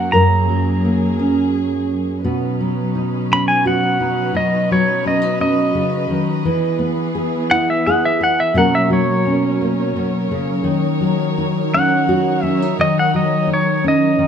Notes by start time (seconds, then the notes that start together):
Already playing: F#2 F#3 A#3 C#4 F#5
0.12 F#2 G#4 A#4 A#5
0.49 F#3
0.85 A#3
1.19 C#4
2.25 B2 F#3 C#4 D#4 B4
2.60 F#3
2.95 D#4
3.32 C#4 B5
3.48 G#5
3.66 F#4 F#5
4.00 D#4
4.35 B2 D#5
4.71 F#3 C#5
5.06 C#4 D#5
5.22 D#4
5.41 C#4 D#5
5.75 C#3
6.10 D#3
6.44 E3 B3 G#4
6.79 B3
7.15 G#4
7.51 E4 F#5
7.70 E5
7.87 G#4 F#5
8.05 E5
8.21 G#4 F#5
8.40 E5
8.54 B2 F#3 A#3 C#4 A#4 C#5 F#5
8.75 E5
8.90 F#3 C#5
9.26 C#4
9.61 A#3
9.96 B2
10.31 C#3
10.64 D#3
10.69 D#4
11.00 F#3
11.38 D#4
11.74 C#4 F#5
12.09 F#4
12.43 C#4 E5
12.62 D#4
12.79 D#3 D#5
12.99 F#5
13.14 F#3 D#5
13.47 D#4
13.53 C#5
13.84 C#4 D#5
14.19 D#3